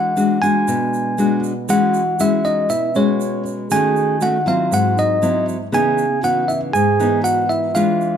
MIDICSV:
0, 0, Header, 1, 5, 480
1, 0, Start_track
1, 0, Key_signature, 4, "major"
1, 0, Tempo, 505476
1, 1600, Time_signature, 4, 2, 24, 8
1, 7759, End_track
2, 0, Start_track
2, 0, Title_t, "Tine electric piano"
2, 0, Program_c, 0, 4
2, 0, Note_on_c, 0, 78, 76
2, 396, Note_on_c, 0, 80, 85
2, 420, Note_off_c, 0, 78, 0
2, 1320, Note_off_c, 0, 80, 0
2, 1616, Note_on_c, 0, 78, 100
2, 2096, Note_on_c, 0, 76, 84
2, 2102, Note_off_c, 0, 78, 0
2, 2325, Note_on_c, 0, 75, 75
2, 2335, Note_off_c, 0, 76, 0
2, 2546, Note_off_c, 0, 75, 0
2, 2563, Note_on_c, 0, 76, 84
2, 2809, Note_off_c, 0, 76, 0
2, 2813, Note_on_c, 0, 73, 63
2, 3254, Note_off_c, 0, 73, 0
2, 3530, Note_on_c, 0, 80, 90
2, 4013, Note_on_c, 0, 78, 82
2, 4019, Note_off_c, 0, 80, 0
2, 4230, Note_off_c, 0, 78, 0
2, 4254, Note_on_c, 0, 77, 76
2, 4494, Note_off_c, 0, 77, 0
2, 4498, Note_on_c, 0, 78, 87
2, 4736, Note_off_c, 0, 78, 0
2, 4737, Note_on_c, 0, 75, 75
2, 5175, Note_off_c, 0, 75, 0
2, 5455, Note_on_c, 0, 80, 95
2, 5894, Note_off_c, 0, 80, 0
2, 5927, Note_on_c, 0, 78, 84
2, 6156, Note_on_c, 0, 76, 69
2, 6170, Note_off_c, 0, 78, 0
2, 6265, Note_off_c, 0, 76, 0
2, 6395, Note_on_c, 0, 80, 101
2, 6843, Note_off_c, 0, 80, 0
2, 6876, Note_on_c, 0, 78, 83
2, 7116, Note_on_c, 0, 76, 73
2, 7124, Note_off_c, 0, 78, 0
2, 7358, Note_on_c, 0, 77, 77
2, 7365, Note_off_c, 0, 76, 0
2, 7759, Note_off_c, 0, 77, 0
2, 7759, End_track
3, 0, Start_track
3, 0, Title_t, "Alto flute"
3, 0, Program_c, 1, 73
3, 1593, Note_on_c, 1, 66, 76
3, 2043, Note_off_c, 1, 66, 0
3, 2076, Note_on_c, 1, 64, 73
3, 2301, Note_off_c, 1, 64, 0
3, 2314, Note_on_c, 1, 63, 67
3, 2540, Note_off_c, 1, 63, 0
3, 2552, Note_on_c, 1, 64, 74
3, 2777, Note_off_c, 1, 64, 0
3, 2783, Note_on_c, 1, 61, 66
3, 3237, Note_off_c, 1, 61, 0
3, 3504, Note_on_c, 1, 68, 79
3, 3958, Note_off_c, 1, 68, 0
3, 3986, Note_on_c, 1, 66, 72
3, 4215, Note_off_c, 1, 66, 0
3, 4231, Note_on_c, 1, 65, 62
3, 4458, Note_off_c, 1, 65, 0
3, 4467, Note_on_c, 1, 66, 74
3, 4696, Note_off_c, 1, 66, 0
3, 4713, Note_on_c, 1, 63, 69
3, 5162, Note_off_c, 1, 63, 0
3, 5432, Note_on_c, 1, 68, 80
3, 5882, Note_off_c, 1, 68, 0
3, 5906, Note_on_c, 1, 66, 75
3, 6135, Note_off_c, 1, 66, 0
3, 6152, Note_on_c, 1, 64, 63
3, 6209, Note_off_c, 1, 64, 0
3, 6378, Note_on_c, 1, 68, 85
3, 6834, Note_off_c, 1, 68, 0
3, 6860, Note_on_c, 1, 66, 75
3, 7092, Note_off_c, 1, 66, 0
3, 7100, Note_on_c, 1, 64, 64
3, 7317, Note_off_c, 1, 64, 0
3, 7323, Note_on_c, 1, 65, 68
3, 7759, Note_off_c, 1, 65, 0
3, 7759, End_track
4, 0, Start_track
4, 0, Title_t, "Nylon-string guitar"
4, 0, Program_c, 2, 24
4, 0, Note_on_c, 2, 52, 64
4, 0, Note_on_c, 2, 56, 51
4, 0, Note_on_c, 2, 62, 54
4, 0, Note_on_c, 2, 66, 63
4, 118, Note_off_c, 2, 56, 0
4, 120, Note_off_c, 2, 62, 0
4, 122, Note_off_c, 2, 66, 0
4, 156, Note_on_c, 2, 56, 51
4, 161, Note_on_c, 2, 62, 50
4, 164, Note_on_c, 2, 66, 57
4, 360, Note_off_c, 2, 56, 0
4, 361, Note_off_c, 2, 62, 0
4, 364, Note_off_c, 2, 66, 0
4, 403, Note_on_c, 2, 56, 57
4, 409, Note_on_c, 2, 62, 58
4, 413, Note_on_c, 2, 66, 61
4, 612, Note_off_c, 2, 52, 0
4, 645, Note_on_c, 2, 47, 55
4, 1083, Note_off_c, 2, 56, 0
4, 1085, Note_off_c, 2, 62, 0
4, 1088, Note_off_c, 2, 66, 0
4, 1121, Note_on_c, 2, 56, 56
4, 1126, Note_on_c, 2, 62, 53
4, 1132, Note_on_c, 2, 66, 58
4, 1443, Note_off_c, 2, 56, 0
4, 1446, Note_off_c, 2, 62, 0
4, 1447, Note_off_c, 2, 66, 0
4, 1579, Note_off_c, 2, 47, 0
4, 1600, Note_on_c, 2, 52, 66
4, 1602, Note_on_c, 2, 56, 51
4, 1606, Note_on_c, 2, 66, 57
4, 1609, Note_on_c, 2, 61, 56
4, 1909, Note_off_c, 2, 56, 0
4, 1911, Note_off_c, 2, 61, 0
4, 1912, Note_off_c, 2, 66, 0
4, 2085, Note_on_c, 2, 56, 48
4, 2090, Note_on_c, 2, 61, 49
4, 2095, Note_on_c, 2, 66, 52
4, 2538, Note_off_c, 2, 52, 0
4, 2554, Note_on_c, 2, 47, 54
4, 2560, Note_off_c, 2, 56, 0
4, 2563, Note_off_c, 2, 61, 0
4, 2565, Note_off_c, 2, 66, 0
4, 2805, Note_on_c, 2, 56, 54
4, 2811, Note_on_c, 2, 66, 61
4, 2812, Note_on_c, 2, 61, 57
4, 3485, Note_off_c, 2, 56, 0
4, 3486, Note_off_c, 2, 61, 0
4, 3487, Note_off_c, 2, 66, 0
4, 3493, Note_off_c, 2, 47, 0
4, 3522, Note_on_c, 2, 51, 70
4, 3525, Note_on_c, 2, 57, 55
4, 3528, Note_on_c, 2, 61, 54
4, 3529, Note_on_c, 2, 66, 56
4, 3964, Note_off_c, 2, 57, 0
4, 3964, Note_off_c, 2, 61, 0
4, 3966, Note_off_c, 2, 66, 0
4, 3998, Note_on_c, 2, 57, 45
4, 4002, Note_on_c, 2, 61, 45
4, 4005, Note_on_c, 2, 66, 60
4, 4140, Note_off_c, 2, 57, 0
4, 4142, Note_off_c, 2, 61, 0
4, 4143, Note_off_c, 2, 66, 0
4, 4235, Note_on_c, 2, 54, 63
4, 4243, Note_on_c, 2, 60, 57
4, 4246, Note_on_c, 2, 64, 57
4, 4457, Note_off_c, 2, 51, 0
4, 4475, Note_on_c, 2, 44, 55
4, 4920, Note_off_c, 2, 54, 0
4, 4921, Note_off_c, 2, 60, 0
4, 4922, Note_off_c, 2, 64, 0
4, 4959, Note_on_c, 2, 54, 51
4, 4965, Note_on_c, 2, 60, 58
4, 4965, Note_on_c, 2, 64, 62
4, 5282, Note_off_c, 2, 54, 0
4, 5283, Note_off_c, 2, 60, 0
4, 5285, Note_off_c, 2, 64, 0
4, 5413, Note_off_c, 2, 44, 0
4, 5433, Note_on_c, 2, 49, 66
4, 5436, Note_on_c, 2, 52, 54
4, 5436, Note_on_c, 2, 59, 51
4, 5440, Note_on_c, 2, 63, 58
4, 5745, Note_off_c, 2, 52, 0
4, 5747, Note_off_c, 2, 59, 0
4, 5748, Note_off_c, 2, 63, 0
4, 5915, Note_on_c, 2, 52, 51
4, 5918, Note_on_c, 2, 59, 49
4, 5926, Note_on_c, 2, 63, 52
4, 6372, Note_off_c, 2, 49, 0
4, 6394, Note_off_c, 2, 52, 0
4, 6397, Note_off_c, 2, 59, 0
4, 6398, Note_off_c, 2, 63, 0
4, 6401, Note_on_c, 2, 44, 59
4, 6643, Note_on_c, 2, 52, 55
4, 6649, Note_on_c, 2, 59, 55
4, 6652, Note_on_c, 2, 63, 59
4, 7322, Note_off_c, 2, 52, 0
4, 7326, Note_off_c, 2, 59, 0
4, 7326, Note_off_c, 2, 63, 0
4, 7336, Note_off_c, 2, 44, 0
4, 7361, Note_on_c, 2, 52, 63
4, 7363, Note_on_c, 2, 56, 53
4, 7366, Note_on_c, 2, 62, 57
4, 7370, Note_on_c, 2, 65, 57
4, 7759, Note_off_c, 2, 52, 0
4, 7759, Note_off_c, 2, 56, 0
4, 7759, Note_off_c, 2, 62, 0
4, 7759, Note_off_c, 2, 65, 0
4, 7759, End_track
5, 0, Start_track
5, 0, Title_t, "Drums"
5, 161, Note_on_c, 9, 82, 58
5, 256, Note_off_c, 9, 82, 0
5, 409, Note_on_c, 9, 82, 27
5, 504, Note_off_c, 9, 82, 0
5, 645, Note_on_c, 9, 82, 62
5, 740, Note_off_c, 9, 82, 0
5, 888, Note_on_c, 9, 82, 27
5, 983, Note_off_c, 9, 82, 0
5, 1123, Note_on_c, 9, 82, 56
5, 1218, Note_off_c, 9, 82, 0
5, 1365, Note_on_c, 9, 82, 26
5, 1460, Note_off_c, 9, 82, 0
5, 1604, Note_on_c, 9, 82, 65
5, 1699, Note_off_c, 9, 82, 0
5, 1842, Note_on_c, 9, 82, 26
5, 1937, Note_off_c, 9, 82, 0
5, 2085, Note_on_c, 9, 82, 63
5, 2180, Note_off_c, 9, 82, 0
5, 2323, Note_on_c, 9, 82, 23
5, 2418, Note_off_c, 9, 82, 0
5, 2563, Note_on_c, 9, 82, 64
5, 2658, Note_off_c, 9, 82, 0
5, 2800, Note_on_c, 9, 82, 24
5, 2895, Note_off_c, 9, 82, 0
5, 3045, Note_on_c, 9, 82, 55
5, 3140, Note_off_c, 9, 82, 0
5, 3285, Note_on_c, 9, 82, 23
5, 3380, Note_off_c, 9, 82, 0
5, 3520, Note_on_c, 9, 82, 62
5, 3615, Note_off_c, 9, 82, 0
5, 3763, Note_on_c, 9, 82, 28
5, 3858, Note_off_c, 9, 82, 0
5, 3999, Note_on_c, 9, 82, 56
5, 4094, Note_off_c, 9, 82, 0
5, 4245, Note_on_c, 9, 82, 22
5, 4340, Note_off_c, 9, 82, 0
5, 4486, Note_on_c, 9, 82, 57
5, 4581, Note_off_c, 9, 82, 0
5, 4729, Note_on_c, 9, 82, 26
5, 4824, Note_off_c, 9, 82, 0
5, 4963, Note_on_c, 9, 82, 59
5, 5058, Note_off_c, 9, 82, 0
5, 5208, Note_on_c, 9, 82, 24
5, 5303, Note_off_c, 9, 82, 0
5, 5446, Note_on_c, 9, 82, 61
5, 5541, Note_off_c, 9, 82, 0
5, 5679, Note_on_c, 9, 82, 27
5, 5774, Note_off_c, 9, 82, 0
5, 5923, Note_on_c, 9, 82, 57
5, 6018, Note_off_c, 9, 82, 0
5, 6166, Note_on_c, 9, 82, 23
5, 6261, Note_off_c, 9, 82, 0
5, 6407, Note_on_c, 9, 82, 60
5, 6502, Note_off_c, 9, 82, 0
5, 6649, Note_on_c, 9, 82, 26
5, 6744, Note_off_c, 9, 82, 0
5, 6884, Note_on_c, 9, 82, 61
5, 6979, Note_off_c, 9, 82, 0
5, 7123, Note_on_c, 9, 82, 25
5, 7218, Note_off_c, 9, 82, 0
5, 7363, Note_on_c, 9, 82, 62
5, 7458, Note_off_c, 9, 82, 0
5, 7606, Note_on_c, 9, 82, 25
5, 7701, Note_off_c, 9, 82, 0
5, 7759, End_track
0, 0, End_of_file